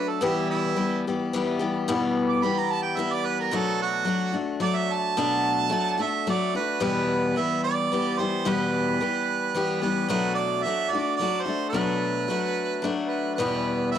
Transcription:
Already playing: F#3 A3 D4 F#4
0.08 A4
0.21 E2 B2 E3 G3 B3 E4 G4
0.50 E4
0.76 E3 G3 B3 G4
1.07 E3 G3 B3 G4
1.33 E3 G3 B3 G4
1.59 E3 G3 B3 G4
1.88 E2 B2 E3 G3 B3 G4
2.29 D6
2.43 E3 G3 B3 G4 B5
2.58 A#5
2.71 A5
2.83 G5
2.97 E3 G3 B3 G4 E5
3.13 D5
3.25 B4
3.40 A#4
3.51 B2 F#3 A3 D4 F#4
3.56 A4
3.82 F#4
4.05 F#3 A3 D4 F#4
4.33 A3 D4 F#4
4.60 F#3 A3 D4 F#4 D5
4.77 E5
4.92 A5
5.17 B2 F#3 A3 D4 F#4
5.70 F#3 A3 D4 F#4
5.98 A3 D4 F#4
6.03 E5
6.27 F#3 A3 D4 F#4 D5
6.55 A3 D4 F#4 B4
6.80 E2 B2 E3 G3 B3 G4 B4
7.36 E3 G3 B3 G4 E5
7.64 D5
7.92 E3 G3 B3 G4
8.19 E3 G3 B3 G4 C5
8.45 E2 B2 E3 G3 B3 G4 B4
9.01 E3 G3 B3 G4
9.55 E3 G3 B3 G4
9.82 E3 G3 B3 G4 B4
10.08 B2 F#3 A3 D4 F#4 B4
10.35 D5
10.62 F#3 E5
10.67 A3 D4 F#4
10.90 F#4 D5
10.95 A3 D4
11.16 F#3 D5
11.21 A3 D4 F#4
11.42 F#4 C5
11.48 A3 D4
11.69 B2 B4
11.74 F#3 A3 D4 F#4
12.28 F#3 A3 D4 F#4
12.82 F#3 A3 D4 F#4
13.08 B4
13.35 E2 B2 B4
13.40 E3 G3 B3 G4
13.91 E3 E5
13.95 G3

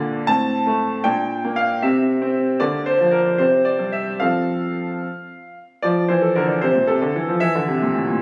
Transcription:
Already playing: A#2 D3 A#3 D5
0.27 A2 C4 A5
0.67 A3
1.04 A#2 D4 G5
1.44 A#3
1.56 F5
1.82 C3 C4 E5
2.22 C4
2.60 D3 A#3 D5
2.86 C5
3.00 F3
3.11 A#4
3.38 C3 C4 C5
3.65 D5
3.79 G2
3.92 E5
4.20 F3 C4 A4 F5
5.82 F3 D5
6.08 E3 C5
6.22 A4
6.35 D3 A#4
6.48 D5
6.61 C3 C5
6.75 A#2
6.87 C3 A4
7.02 D3
7.16 E3
7.28 F3
7.40 E3 E5
7.55 D3
7.68 C3
7.82 A#2
7.94 A2
8.07 A#2

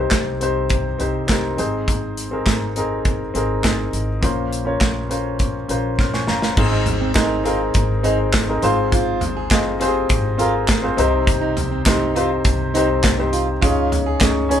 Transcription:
Already playing: C3 C4
0.00 D#4 G4 C5
0.11 C2, kick, snare, clap, closed hi-hat
0.41 C4 D#4 G4 C5, closed hi-hat
0.69 kick, closed hi-hat
0.99 C2 C4 D#4 G4 C5, closed hi-hat
1.27 C4 D#4 G4 A#4, kick, snare, clap, closed hi-hat
1.57 G#1 G#2 C4 D#4 G#4 C5, closed hi-hat
1.88 kick, closed hi-hat
2.17 closed hi-hat
2.31 C4 D#4 G#4 A#4
2.46 G#1, kick, snare, clap, closed hi-hat
2.76 C4 D#4 G#4 A#4, closed hi-hat
3.05 kick, closed hi-hat
3.34 G#1 C4 D#4 G#4 A#4, closed hi-hat
3.63 C4 D#4 G#4 D#5, kick, snare, clap, closed hi-hat
3.93 G#1, closed hi-hat
4.21 A#1 A#2 C#4 F4 A#4 C5, kick, closed hi-hat
4.53 closed hi-hat
4.65 C#4 F4 A#4 C#5
4.81 A#1, kick, snare, clap, closed hi-hat
5.09 C#4 F4 A#4 C5, closed hi-hat
5.39 kick, closed hi-hat
5.68 A#1 C#4 F4 A#4 C5, closed hi-hat
5.99 C6 F6, kick, snare
6.13 G#5 C#6, snare
6.27 G1 F5 A#5, snare
6.42 C5 F5, snare
6.56 G#1 G#2 C4 D#4 G#4 C5, kick, crash
6.72 D#4
6.86 closed hi-hat, floor tom
7.01 C4
7.15 C4 D#4 G#4 A#4, kick, snare, clap, closed hi-hat
7.44 C4 D#4 F4 G#4 A#4, closed hi-hat
7.74 G#1, kick, closed hi-hat
8.03 C4 D#4 G#4 C5, closed hi-hat
8.33 kick, snare, clap, closed hi-hat
8.48 C4 D#4 G#4 A#4
8.62 G#1 G#2 C4 F4 G#4 C5, closed hi-hat
8.92 F4, kick, closed hi-hat
9.21 closed hi-hat, floor tom
9.37 G#4
9.51 C4 F4 G#4 D#5, kick, snare, clap, closed hi-hat
9.80 C4 F4 G4 G#4 C5, closed hi-hat
9.88 G#4
10.09 G#1, kick, closed hi-hat
10.38 C4 F4 G#4 A#4, closed hi-hat
10.68 kick, snare, clap, closed hi-hat
10.83 C4 F4 G#4 C5
10.97 C2 C3 C4 D#4 G4 C5, closed hi-hat
11.27 kick, closed hi-hat
11.41 D#4
11.57 closed hi-hat, floor tom
11.72 C4
11.86 C4 D#4 G4 C5, kick, snare, clap, closed hi-hat
12.15 C4 D#4 F4 G4 C5, closed hi-hat
12.45 C2, kick, closed hi-hat
12.74 C4 D#4 G4 C5, closed hi-hat
13.04 kick, snare, clap, closed hi-hat
13.18 C4 D#4 G4 C5
13.33 F4, closed hi-hat
13.61 C#2 C#3 C#4 D#4 F4 G#4 C#5, kick, closed hi-hat
13.92 closed hi-hat, floor tom
14.06 G#4
14.20 C#4 D#4 G#4 C#5, kick, snare, clap, closed hi-hat
14.49 C#4 D#4 G#4 C#5, closed hi-hat

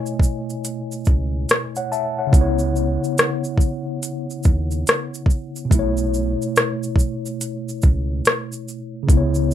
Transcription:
Already playing: B2 A3 E4 C#5 D#5 G#5
0.06 shaker
0.20 kick, shaker
0.50 shaker
0.65 closed hi-hat, shaker
0.92 shaker
1.05 C#2, kick, shaker
1.49 cross-stick, closed hi-hat, shaker
1.76 C#5 F#5, shaker
1.92 E5 A5, shaker
2.19 C#5 F#5
2.27 C#3
2.32 C#2 B3, kick, closed hi-hat, shaker
2.36 E4
2.41 C#5
2.59 shaker
2.76 shaker
3.04 shaker
3.18 cross-stick, closed hi-hat, shaker
3.44 shaker
3.58 kick, shaker
4.03 closed hi-hat, shaker
4.30 shaker
4.43 D#2, kick, shaker
4.71 shaker
4.87 cross-stick, closed hi-hat, shaker
5.14 shaker
5.26 kick
5.30 shaker
5.56 shaker
5.65 B2
5.70 B1 A3, kick, closed hi-hat, shaker
5.74 E4
5.79 C#5
5.97 shaker
6.14 shaker
6.42 shaker
6.56 cross-stick, closed hi-hat, shaker
6.83 shaker
6.96 kick, shaker
7.26 shaker
7.41 closed hi-hat, shaker
7.69 shaker
7.82 C#2, kick, shaker
8.25 cross-stick, closed hi-hat, shaker
8.52 shaker
8.68 shaker
9.03 C#3
9.07 C#2 B3, kick, closed hi-hat, shaker
9.12 E4
9.17 C#5
9.35 shaker

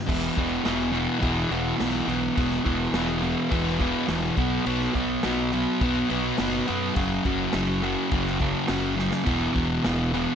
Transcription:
0.06 E1 E2 B2 E3, kick, crash
0.36 E1 E2 B2 E3, kick, crash
0.63 E1 E2 B2 E3, snare, crash
0.92 E2 B2 E3, crash
1.19 E2 B2 E3, kick, crash
1.23 E1
1.51 E1 E2 B2 E3, crash
1.78 B1 E2 B2 E3, snare, crash
2.07 B1 E2 B2 E3, crash
2.36 E1 E2 B2 E3, kick, crash
2.51 snare
2.64 E1 E2 B2 E3, kick, crash
2.93 E1 E2 B2 E3, snare, crash
3.22 E2 B2 E3, crash
3.50 E1 E2 B2 E3, kick, crash
3.66 snare
3.79 E2 B2 E3, kick, crash
4.06 E1 E2 B2 E3, snare, crash
4.36 B1 B2 F#3 B3, kick, crash
4.65 B1 B2 F#3 B3, crash
4.80 snare
4.94 B1 B2 F#3 B3, kick, crash
5.23 B1 B2 F#3 B3, snare, crash
5.52 B2 F#3 B3, crash
5.81 B1 B2 F#3 B3, kick, crash
6.09 B1 B2 F#3 B3, crash
6.38 F#1 B2 F#3 B3, snare, crash
6.66 F#2 B2 F#3 B3, crash
6.95 F#1 F#2 C#3 F#3, kick, crash
7.24 F#1 F#2 C#3 F#3, kick, crash
7.53 F#1 F#2 C#3 F#3, snare, crash
7.81 F#2 C#3 F#3, crash
8.11 F#1 F#2 C#3 F#3, kick, crash
8.26 snare
8.39 F#2 C#3 F#3, kick, crash
8.67 F#1 F#2 C#3 F#3, snare, crash
8.96 F#2 C#3 F#3, snare
9.11 snare
9.24 E1 E2 B2 E3, kick, crash
9.53 E1 E2 B2 E3, kick, crash
9.84 E1 E2 B2 E3, snare, crash
10.12 E2 B2 E3, crash

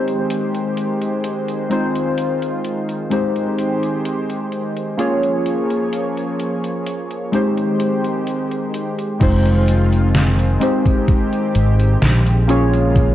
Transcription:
Already playing: D#3 G#3 C4 D#4 G4 C5
0.08 closed hi-hat
0.30 closed hi-hat
0.55 closed hi-hat
0.77 closed hi-hat
1.02 closed hi-hat
1.24 closed hi-hat
1.49 closed hi-hat
1.69 G#3 C4 D#4 F4 C5, closed hi-hat
1.95 closed hi-hat
2.18 closed hi-hat
2.42 closed hi-hat
2.65 closed hi-hat
2.89 closed hi-hat
3.10 G#3 C4 D#4 G4 C5, closed hi-hat
3.36 closed hi-hat
3.59 closed hi-hat
3.83 closed hi-hat
4.05 closed hi-hat
4.30 closed hi-hat
4.52 closed hi-hat
4.77 closed hi-hat
4.97 F3 A#3 C#4 F4 G#4 C#5, closed hi-hat
5.23 closed hi-hat
5.46 closed hi-hat
5.70 closed hi-hat
5.93 closed hi-hat
6.17 closed hi-hat
6.40 closed hi-hat
6.64 closed hi-hat
6.86 closed hi-hat
7.11 closed hi-hat
7.32 D#3 G#3 C4 D#4 G4 C5, closed hi-hat
7.58 closed hi-hat
7.80 closed hi-hat
8.05 closed hi-hat
8.27 closed hi-hat
8.51 closed hi-hat
8.74 closed hi-hat
8.98 closed hi-hat
9.20 F1 D#3 G#3 C4 D#4 F4 C5, kick, closed hi-hat, crash, tambourine
9.45 closed hi-hat, tambourine
9.68 closed hi-hat
9.92 closed hi-hat, tambourine
10.15 snare, closed hi-hat, tambourine
10.39 closed hi-hat, tambourine
10.60 G#3 C4 D#4 G4 C5, closed hi-hat
10.86 kick, closed hi-hat, tambourine
11.08 kick, closed hi-hat, tambourine
11.33 closed hi-hat, tambourine
11.55 G#1, closed hi-hat
11.80 closed hi-hat, tambourine
12.02 A#1, snare, closed hi-hat, tambourine
12.27 closed hi-hat, tambourine
12.47 C#3 G#3 A#3 C#4 F4 G#4 C#5, closed hi-hat
12.74 closed hi-hat, tambourine
12.96 kick, closed hi-hat, tambourine

